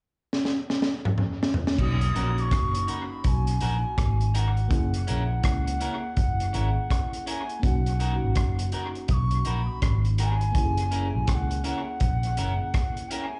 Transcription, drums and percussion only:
0.33 snare
0.45 snare
0.70 snare
0.82 snare
1.05 mid tom
1.18 mid tom
1.43 snare
1.54 floor tom
1.67 snare
1.79 kick, crash
2.01 closed hi-hat
2.16 closed hi-hat
2.38 closed hi-hat
2.51 kick, cross-stick, closed hi-hat
2.75 closed hi-hat
2.88 closed hi-hat
3.24 kick, closed hi-hat
3.47 closed hi-hat
3.60 closed hi-hat
3.98 kick, cross-stick, closed hi-hat
4.21 closed hi-hat
4.35 closed hi-hat
4.57 closed hi-hat
4.71 kick, closed hi-hat
4.94 closed hi-hat
5.08 closed hi-hat
5.43 kick, cross-stick, closed hi-hat
5.67 closed hi-hat
5.81 closed hi-hat
6.17 kick, closed hi-hat
6.40 closed hi-hat
6.54 closed hi-hat
6.91 kick, cross-stick, closed hi-hat
7.13 closed hi-hat
7.27 closed hi-hat
7.49 closed hi-hat
7.63 kick, closed hi-hat
7.86 closed hi-hat
8.00 closed hi-hat
8.35 kick, cross-stick, closed hi-hat
8.59 closed hi-hat
8.72 closed hi-hat
8.95 closed hi-hat
9.08 kick, closed hi-hat
9.31 closed hi-hat
9.45 closed hi-hat
9.82 kick, cross-stick, closed hi-hat
10.05 closed hi-hat
10.18 closed hi-hat
10.41 closed hi-hat
10.55 kick, closed hi-hat
10.77 closed hi-hat
10.92 closed hi-hat
11.27 kick, cross-stick, closed hi-hat
11.51 closed hi-hat
11.64 closed hi-hat
12.00 kick, closed hi-hat
12.23 closed hi-hat
12.37 closed hi-hat
12.74 kick, cross-stick, closed hi-hat
12.97 closed hi-hat
13.11 closed hi-hat

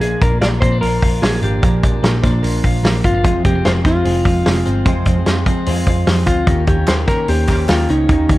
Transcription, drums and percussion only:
0.01 hi-hat pedal, open hi-hat
0.21 kick, hi-hat pedal, open hi-hat
0.41 snare, hi-hat pedal, open hi-hat
0.62 kick, hi-hat pedal, open hi-hat
0.82 hi-hat pedal, open hi-hat
1.02 kick, hi-hat pedal, open hi-hat
1.23 snare, hi-hat pedal, open hi-hat
1.42 hi-hat pedal, open hi-hat
1.63 kick, hi-hat pedal, open hi-hat
1.83 kick, hi-hat pedal, open hi-hat
2.04 snare, hi-hat pedal, open hi-hat
2.23 kick, snare, hi-hat pedal, open hi-hat
2.44 hi-hat pedal, open hi-hat
2.64 kick, hi-hat pedal, open hi-hat
2.84 snare, hi-hat pedal, open hi-hat
3.04 kick, hi-hat pedal, open hi-hat
3.25 kick, hi-hat pedal, open hi-hat
3.44 kick, hi-hat pedal, open hi-hat
3.65 snare, hi-hat pedal, open hi-hat
3.85 kick, snare, hi-hat pedal, open hi-hat
4.05 hi-hat pedal, open hi-hat
4.25 kick, hi-hat pedal, open hi-hat
4.46 snare, hi-hat pedal, open hi-hat
4.65 hi-hat pedal, open hi-hat
4.86 kick, hi-hat pedal, open hi-hat
5.05 kick, hi-hat pedal, open hi-hat
5.26 snare, hi-hat pedal, open hi-hat
5.46 kick, hi-hat pedal, open hi-hat
5.66 hi-hat pedal, open hi-hat
5.86 kick, hi-hat pedal, open hi-hat
6.07 snare, hi-hat pedal, open hi-hat
6.26 kick, hi-hat pedal, open hi-hat
6.47 kick, hi-hat pedal, open hi-hat
6.67 kick, hi-hat pedal, open hi-hat
6.87 snare, clap, hi-hat pedal, open hi-hat
7.07 kick, snare, hi-hat pedal, open hi-hat
7.28 hi-hat pedal, open hi-hat
7.48 kick, clap, hi-hat pedal, open hi-hat
7.68 snare, clap, hi-hat pedal, open hi-hat
7.88 hi-hat pedal, open hi-hat
8.09 kick, hi-hat pedal, open hi-hat
8.29 kick, hi-hat pedal, open hi-hat

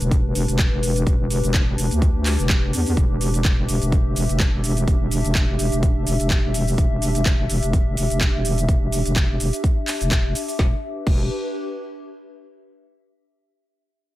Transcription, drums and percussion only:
0.01 closed hi-hat, shaker
0.11 kick, closed hi-hat, shaker
0.35 open hi-hat, shaker
0.48 closed hi-hat, shaker
0.59 kick, clap, closed hi-hat, shaker
0.83 open hi-hat, shaker
0.96 closed hi-hat, shaker
1.07 kick, closed hi-hat, shaker
1.30 open hi-hat, shaker
1.44 closed hi-hat, shaker
1.54 kick, clap, closed hi-hat, shaker
1.78 open hi-hat, shaker
1.91 closed hi-hat, shaker
2.02 kick, closed hi-hat, shaker
2.26 clap, open hi-hat, shaker
2.39 closed hi-hat, shaker
2.49 kick, clap, closed hi-hat, shaker
2.73 open hi-hat, shaker
2.86 open hi-hat, shaker
2.97 kick, shaker
3.21 open hi-hat, shaker
3.34 closed hi-hat, shaker
3.45 kick, clap, closed hi-hat, shaker
3.69 open hi-hat, shaker
3.82 closed hi-hat, shaker
3.92 kick, closed hi-hat, shaker
4.16 open hi-hat, shaker
4.29 closed hi-hat, shaker
4.40 kick, clap, closed hi-hat, shaker
4.64 open hi-hat, shaker
4.77 closed hi-hat, shaker
4.88 kick, closed hi-hat, shaker
5.11 open hi-hat, shaker
5.24 closed hi-hat, shaker
5.35 kick, clap, closed hi-hat, shaker
5.59 open hi-hat, shaker
5.72 closed hi-hat, shaker
5.83 kick, closed hi-hat, shaker
6.07 open hi-hat, shaker
6.20 closed hi-hat, shaker
6.30 kick, clap, closed hi-hat, shaker
6.54 open hi-hat, shaker
6.67 open hi-hat, shaker
6.78 kick, closed hi-hat, shaker
7.02 open hi-hat, shaker
7.15 closed hi-hat, shaker
7.26 kick, clap, closed hi-hat, shaker
7.50 open hi-hat, shaker
7.63 closed hi-hat, shaker
7.73 kick, closed hi-hat, shaker
7.97 open hi-hat, shaker
8.10 closed hi-hat, shaker
8.21 kick, clap, closed hi-hat, shaker
8.45 open hi-hat, shaker
8.58 closed hi-hat, shaker
8.69 kick, closed hi-hat, shaker
8.92 open hi-hat, shaker
9.06 closed hi-hat, shaker
9.16 kick, clap, closed hi-hat, shaker
9.40 open hi-hat, shaker
9.53 closed hi-hat, shaker
9.64 kick, closed hi-hat, shaker
9.88 clap, open hi-hat, shaker
10.01 closed hi-hat, shaker
10.11 kick, clap, closed hi-hat, shaker
10.35 open hi-hat, shaker
10.48 open hi-hat, shaker
10.59 kick, snare
11.07 kick, crash

